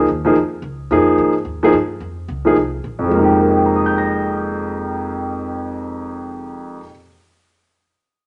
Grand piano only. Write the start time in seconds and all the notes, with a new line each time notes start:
0.25 F3 A#3 D#4 G#4
0.91 F3 A#3 D#4 G#4
1.63 F3 A#3 D#4 G#4
2.45 F3 A#3 D#4 G#4
2.99 F2
3.04 F3
3.09 G#3
3.14 A#3
3.19 D#4
3.24 G4
3.41 A#4
3.48 D#5
3.56 G5
3.66 A#5
3.76 D#6
3.86 G6
3.98 A#6